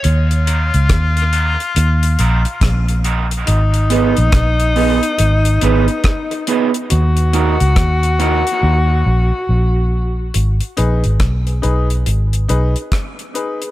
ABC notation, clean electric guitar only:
X:1
M:4/4
L:1/8
Q:"Swing 16ths" 1/4=70
K:G#dor
V:1 name="Clean electric guitar"
z [A,DFA] z [A,DFA] z [A,DFA] z [A,DFA] | z [B,DGB] z [B,DGB] z [B,DGB] z [B,DGB] | z [A,DFA] z [A,DFA] z4 | z8 |]